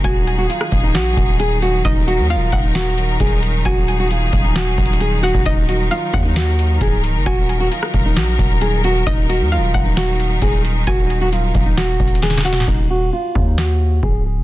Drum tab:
CC |------------------------------------------------|------------------------------------------------|------------------------------------------------|------------------------------------------------|
HH |x-----x-----x-----x-----x-----x-----x-----x-----|x-----x-----x-----x-----x-----x-----x-----x-----|x-----x-----x-----x-----x-----x-x-x-x-----o-----|x-----x-----x-----x-----x-----x-----x-----x-----|
SD |---------------r--------o-----------------------|------------------------o-----------------------|------------------------o-----------------------|------------------------o-----------------------|
BD |o-----------------o-----------o-----------------|o-----------------o-----------------o-----------|o-----------------o-----------o--------------o--|o-----------------o-----------------o-----------|

CC |------------------------------------------------|------------------------------------------------|------------------------------------------------|x-----------------------------------------------|
HH |x-----x-----x-----x-----x-----x-----x-----x-----|x-----x-----x-----x-----x-----x-----x-----x-----|x-----x-----x-----x-----x-----x-x-x-x-----o-----|------------------------------------------------|
SD |---------------r--------o-----------------------|------------------------o-----------------------|------------------------o-----------o-o-o-o-o-o-|------------------------o-----------------------|
BD |o-----------------o-----------o-----------------|o-----------------o-----------------o-----------|o-----------------o-----------o-----------------|o-----------------o-----------------o-----------|